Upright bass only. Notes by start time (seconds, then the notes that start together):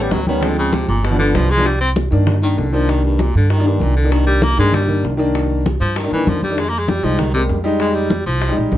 0.11 D2
0.88 G1
1.35 C2
2.12 G2
2.58 C2
3.35 G2
3.81 C2
4.58 G2
5.04 C2
5.80 G2
6.11 G2
6.26 F2
7.03 C2
7.50 F2
8.26 C2
8.57 A#1
8.72 C2